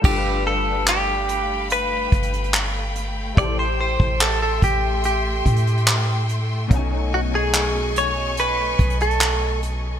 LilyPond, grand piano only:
\new Staff \with { instrumentName = "Grand piano" } { \time 4/4 \key g \mixolydian \tempo 4 = 72 <g d' f' a' b'>1 | <a e' g' a' c''>1 | <b, fis a cis' dis' gis''>1 | }